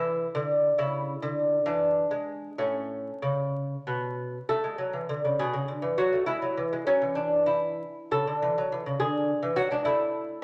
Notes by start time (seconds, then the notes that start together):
Already playing: E3 E4
0.35 D3
0.78 C#3 E4
1.22 D3
1.66 E3 D4
2.11 G#3
2.58 A2 C#4
3.22 C#3
3.87 B2
4.49 A3 A4
4.64 G#3
4.78 F#3
4.93 E3
5.09 D3
5.25 C#3
5.39 B2 G#4
5.53 C#3
5.68 D3
5.82 E3
5.98 F#3 F#4
6.13 A3
6.26 G#3 E4
6.42 F#3
6.57 E3
6.73 G#3
6.87 F#3 C#4
7.02 E3
7.15 D4
7.46 E4
8.11 C#3 A4
8.27 D3
8.42 E3
8.58 F#3
8.72 E3
8.86 C#3
9.00 D3 G#4
9.43 E3
9.56 F#3 F#4
9.71 G#3 D4
9.85 A3 E4